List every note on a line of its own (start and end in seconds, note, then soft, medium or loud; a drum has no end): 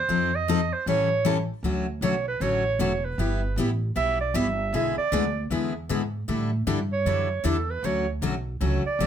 0.00 0.37 C5 medium
0.09 0.71 F2 medium
0.09 0.30 F3 medium
0.09 0.30 C4 medium
0.09 0.31 D#4 medium
0.09 0.31 A4 medium
0.35 0.74 D#5 loud
0.48 0.59 F3 medium
0.48 0.60 C4 medium
0.48 0.60 D#4 medium
0.48 0.60 A4 loud
0.73 0.87 C5 medium
0.86 1.48 A1 medium
0.86 1.08 E3 medium
0.86 1.08 G3 medium
0.86 1.08 C#4 medium
0.86 1.08 E4 medium
0.86 1.09 A4 medium
0.86 1.46 C#5 medium
1.25 1.36 E3 medium
1.25 1.36 G3 medium
1.25 1.37 C#4 medium
1.25 1.37 E4 medium
1.25 1.37 A4 loud
1.63 2.00 D2 medium
1.63 1.85 D3 medium
1.63 1.85 F#3 medium
1.63 1.85 A3 medium
1.63 1.86 C#4 medium
1.63 1.86 F#4 medium
2.01 2.39 B1 medium
2.01 2.14 D3 medium
2.01 2.14 F#3 medium
2.01 2.14 A3 medium
2.01 2.14 C#4 medium
2.01 2.14 F#4 medium
2.01 2.25 C#5 medium
2.28 2.43 B4 medium
2.40 2.78 A1 medium
2.40 2.62 D3 medium
2.40 2.62 F#3 medium
2.40 2.63 A3 medium
2.40 2.63 C#4 medium
2.40 2.63 F#4 medium
2.40 2.80 C#5 medium
2.79 3.17 E1 medium
2.79 2.91 D3 medium
2.79 2.91 F#3 medium
2.79 2.91 A3 medium
2.79 2.91 C#4 medium
2.79 2.92 F#4 medium
2.79 3.06 C#5 medium
3.05 3.58 B4 medium
3.18 3.56 G1 medium
3.18 3.40 G3 medium
3.18 3.40 B3 medium
3.18 3.40 E4 medium
3.18 3.41 G4 medium
3.56 3.94 A1 medium
3.56 3.69 G3 medium
3.56 3.69 B3 medium
3.56 3.69 E4 medium
3.56 3.70 G4 loud
3.96 4.34 B1 medium
3.96 4.17 G3 medium
3.96 4.17 B3 medium
3.96 4.18 E4 medium
3.96 4.18 G4 medium
3.96 4.19 E5 loud
4.21 4.37 D5 medium
4.34 4.72 G1 medium
4.34 4.46 G3 medium
4.34 4.46 B3 medium
4.34 4.46 E4 medium
4.34 4.46 G4 loud
4.34 4.74 E5 medium
4.73 4.96 B1 medium
4.73 4.95 D3 medium
4.73 4.95 G#3 medium
4.73 4.95 B3 medium
4.73 4.95 E4 medium
4.73 4.95 G#4 medium
4.73 4.97 E5 medium
4.97 5.47 D5 medium
4.97 muted upright bass stroke soft
5.12 5.50 D2 medium
5.12 5.23 D3 medium
5.12 5.24 G#3 medium
5.12 5.24 B3 medium
5.12 5.24 E4 medium
5.12 5.24 G#4 medium
5.50 5.88 E2 medium
5.50 5.72 D3 medium
5.50 5.72 G#3 medium
5.50 5.73 B3 medium
5.50 5.73 E4 medium
5.50 5.73 G#4 medium
5.89 6.27 G#2 medium
5.89 6.01 D3 medium
5.89 6.01 G#3 medium
5.89 6.01 B3 medium
5.89 6.01 E4 medium
5.89 6.01 G#4 medium
6.28 6.66 A2 medium
6.28 6.49 D3 medium
6.28 6.50 G3 medium
6.28 6.50 D4 medium
6.28 6.50 E4 medium
6.28 6.50 A4 medium
6.67 7.05 G2 medium
6.67 6.78 D3 medium
6.67 6.78 G3 medium
6.67 6.78 D4 medium
6.67 6.79 E4 medium
6.67 6.79 A4 loud
6.93 7.48 C#5 medium
7.06 7.43 F#2 medium
7.06 7.27 D3 medium
7.06 7.27 G3 medium
7.06 7.28 D4 medium
7.06 7.28 E4 medium
7.06 7.28 A4 medium
7.44 7.82 E2 medium
7.44 7.55 D3 medium
7.44 7.56 G3 medium
7.44 7.56 D4 medium
7.44 7.56 E4 medium
7.44 7.56 A4 medium
7.44 7.72 A4 medium
7.70 7.87 B4 medium
7.83 8.21 D2 medium
7.83 8.05 D3 medium
7.83 8.05 F#3 medium
7.83 8.05 A3 medium
7.83 8.05 C#4 medium
7.83 8.06 F#4 medium
7.83 8.09 C#5 medium
8.22 8.59 B1 medium
8.22 8.33 D3 medium
8.22 8.34 F#3 medium
8.22 8.34 A3 medium
8.22 8.34 C#4 medium
8.22 8.34 F#4 loud
8.60 8.83 C#2 medium
8.60 8.82 D3 medium
8.60 8.82 F#3 medium
8.60 8.82 A3 medium
8.60 8.82 C#4 medium
8.60 8.83 F#4 medium
8.84 9.07 D5 medium
8.84 muted upright bass stroke soft
8.99 9.07 A1 medium
8.99 9.07 D3 medium
8.99 9.07 F#3 medium
8.99 9.07 A3 medium
8.99 9.07 C#4 medium
8.99 9.07 F#4 medium